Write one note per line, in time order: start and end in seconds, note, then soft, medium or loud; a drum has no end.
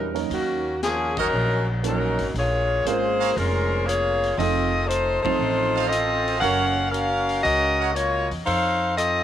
0.00 0.27 E2 medium
0.00 0.16 F#3 medium
0.00 0.11 G3 medium
0.00 0.11 B3 soft
0.00 0.16 C#4 medium
0.00 0.11 D4 soft
0.00 0.16 D#4 medium
0.00 0.12 E4 soft
0.00 0.16 A#4 medium
0.00 0.12 B4 medium
0.14 0.59 F#3 medium
0.14 0.59 A#3 soft
0.14 0.59 C#4 soft
0.14 0.59 D#4 medium
0.14 0.59 A#4 medium
0.14 open hi-hat soft
0.30 1.28 D#2 medium
0.30 0.79 D#3 medium
0.30 0.80 A#3 medium
0.30 0.79 C#4 medium
0.30 0.79 F#4 medium
0.30 open hi-hat soft
0.83 1.15 F3 medium
0.83 1.16 A#3 medium
0.83 1.16 C#4 medium
0.83 1.15 G#4 medium
0.83 snare soft
0.83 closed hi-hat medium
1.17 1.69 F#3 medium
1.17 1.69 C#4 medium
1.17 1.69 D#4 medium
1.17 1.28 F#4 medium
1.17 1.28 A#4 medium
1.17 1.69 A#4 loud
1.17 1.28 C#5 medium
1.17 1.28 D#5 loud
1.17 kick medium
1.17 ride medium
1.33 2.15 A#1 medium
1.83 2.35 F#3 medium
1.83 2.33 F#3 medium
1.83 2.35 A#3 soft
1.83 2.35 C#4 soft
1.83 2.32 C#4 medium
1.83 2.35 D#4 soft
1.83 2.33 D#4 medium
1.83 2.36 A#4 medium
1.83 2.33 A#4 medium
1.83 closed hi-hat medium
2.19 2.34 G#1 medium
2.19 open hi-hat soft
2.34 2.82 A#1 medium
2.34 2.85 A#3 medium
2.34 2.86 G#4 medium
2.34 2.88 C#5 medium
2.34 open hi-hat soft
2.38 2.85 F4 medium
2.85 3.33 G#1 medium
2.85 3.66 G#3 medium
2.85 3.37 A#3 medium
2.85 3.65 A#3 medium
2.85 3.66 C#4 soft
2.85 3.35 F4 medium
2.85 3.66 F4 medium
2.85 3.37 G#4 medium
2.85 3.66 A#4 medium
2.85 3.38 C5 medium
2.85 closed hi-hat medium
3.20 3.31 G#4 medium
3.20 3.31 A#4 medium
3.20 3.31 C#5 medium
3.20 3.31 F5 medium
3.20 open hi-hat soft
3.36 4.35 F1 medium
3.36 3.88 G#3 medium
3.36 3.88 C#4 medium
3.36 3.86 F4 medium
3.36 3.88 A#4 loud
3.36 open hi-hat soft
3.87 4.38 A#3 medium
3.87 4.37 F4 medium
3.87 4.38 G#4 medium
3.87 4.38 C#5 medium
3.87 closed hi-hat medium
4.24 open hi-hat soft
4.38 5.21 F1 medium
4.38 4.70 F3 medium
4.38 4.71 A3 medium
4.38 4.86 C4 medium
4.38 4.71 C4 medium
4.38 4.71 D#4 medium
4.38 4.86 F4 medium
4.38 4.86 A4 medium
4.38 4.71 A4 medium
4.38 4.86 D#5 medium
4.38 open hi-hat soft
4.87 5.21 A3 medium
4.87 5.22 D#4 medium
4.87 5.22 F4 medium
4.87 5.21 C5 medium
4.87 closed hi-hat medium
5.22 5.89 F3 medium
5.22 5.87 A3 medium
5.22 5.89 A3 medium
5.22 5.89 C4 medium
5.22 5.87 D#4 medium
5.22 5.89 D#4 medium
5.22 5.87 F4 medium
5.22 5.87 C5 medium
5.22 muted upright bass stroke soft
5.22 kick medium
5.22 ride medium
5.27 5.90 C5 medium
5.39 6.38 A1 medium
5.76 6.40 A4 medium
5.76 6.40 C5 medium
5.76 6.40 D#5 medium
5.76 6.40 F5 medium
5.88 6.41 C4 medium
5.88 6.42 F4 medium
5.88 6.41 A4 medium
5.88 6.41 D#5 medium
5.88 closed hi-hat medium
6.28 open hi-hat soft
6.40 7.40 F#1 medium
6.40 7.86 F#3 medium
6.40 7.87 A#3 medium
6.40 6.89 C#4 medium
6.40 7.87 C#4 soft
6.40 6.66 F#4 medium
6.40 6.89 A#4 medium
6.40 6.66 A#4 medium
6.40 6.66 C#5 medium
6.40 6.89 F5 medium
6.40 6.66 F5 medium
6.40 6.89 F#5 loud
6.40 open hi-hat soft
6.44 7.87 F#4 soft
6.44 7.87 A#4 medium
6.90 7.42 C#4 medium
6.90 7.41 F#4 medium
6.90 7.42 A#4 medium
6.90 7.43 F5 loud
6.94 closed hi-hat medium
7.29 open hi-hat soft
7.42 8.27 C#2 medium
7.42 7.91 C#4 medium
7.42 7.91 F#4 medium
7.42 7.91 A#4 medium
7.42 7.92 D#5 loud
7.42 open hi-hat soft
7.80 7.91 F#4 medium
7.80 7.91 A#4 medium
7.80 7.91 C#5 medium
7.80 7.91 F#5 medium
7.93 8.30 A#3 medium
7.93 8.29 F4 medium
7.93 8.29 F#4 medium
7.93 8.29 C#5 medium
7.93 closed hi-hat medium
8.31 8.46 E2 medium
8.31 open hi-hat soft
8.45 9.23 F2 medium
8.45 8.94 D#4 medium
8.45 8.93 A4 medium
8.45 8.94 C5 medium
8.45 8.94 F5 medium
8.45 open hi-hat soft
8.97 9.23 C4 medium
8.97 9.23 F4 medium
8.97 9.23 A4 medium
8.97 9.23 D#5 medium
8.97 closed hi-hat medium